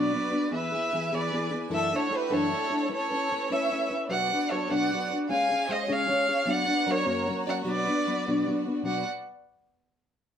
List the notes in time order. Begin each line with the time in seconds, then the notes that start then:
Already playing: B2 F#3 B3 D4 F#4 B4 D5
0.14 F#3 B3 D4 F#4
0.31 B3 D4 F#4
0.51 E3 B3 E4 G#4 B4 E5 G#5
0.71 B3 E4 G#4
0.93 E3 B3 E4 G#4
1.12 E3 B3 E4 G#4 B4 D5
1.33 E3 B3 E4 G#4
1.50 B3 E4 G#4
1.69 F#2 E3 A3 D4 E4 F#4 A4 E5
1.74 A4 E5
1.92 A3 D4 E4 A4 C#5
2.10 A3 D4 E4 A4
2.16 G4 B4
2.30 F#2 E3 A3 D4 E4 A4 C#5
2.34 A4
2.50 A3 E4 A4
2.70 A3 D4 E4 A4
2.88 A3 C#4 E4 A4 B4
2.94 A4 C#5
3.11 C#4 E4 B4
3.31 A3 C#4 B4
3.50 A3 C#4 E4 B4 C#5 E5
3.72 A3 C#4 E4 B4
3.90 C#4 E4 B4
4.05 F#3 B3 F#4 D5
4.09 B2 D4 F#4 B4 D5 F#5
4.31 D4 F#4 B4
4.50 F#3 D4 F#4 A4 B4 C#5
4.69 B2 F#3 D4 F#4 B4 D5 F#5
4.93 F#3 D4 F#4 B4
5.10 D4 F#4 B4
5.28 C#3 G#3 C#4 F4 G#4 F5 G#5
5.50 C#4 F4 G#4
5.69 G#3 C#4 F4 G#4 C5 D#5
5.88 C#3 G#3 C#4 F4 G#4 C#5
5.93 F5
6.08 G#3 C#4 F4 G#4
6.28 C#4 F4 G#4
6.45 F#3 B3 D4 F#4 D5
6.50 F#4 B4 D5 F#5
6.66 B3 D4 F#4
6.86 F#3 B3 D4 F#4 A#4
6.91 C#5
7.06 F#2 C#3 F#3 A#3 C#4 F#4 C#5 A#5
7.28 F#3 A#3 C#4 F#4
7.47 F#3 A#3 C#4 F#4 D5 F#5
7.64 B2 F#3 B3 D4 F#4 B4 D5
7.69 D5
7.87 B3 D4 F#4
8.07 F#3 B3 D4 F#4
8.28 B2 F#3 B3 D4 F#4
8.47 F#3 B3 D4 F#4
8.66 B3 D4 F#4
8.83 B2 F#3 B3 D4 F#4 D5 F#5